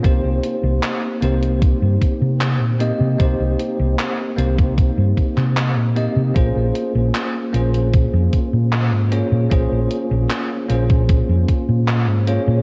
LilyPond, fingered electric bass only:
\new Staff \with { instrumentName = "Fingered electric bass" } { \clef bass \time 4/4 \key bes \dorian \tempo 4 = 76 c,16 c,16 r16 c,16 r8 c,8. g,16 r16 c8 bes,16 r16 c16 | c,16 c,16 r16 c,16 r8 c,8. g,16 r16 c8 bes,16 r16 c16 | bes,,16 bes,,16 r16 bes,,16 r8 bes,,8. f,16 r16 bes,8 aes,16 r16 bes,16 | bes,,16 bes,,16 r16 bes,,16 r8 bes,,8. f,16 r16 bes,8 aes,16 r16 bes,16 | }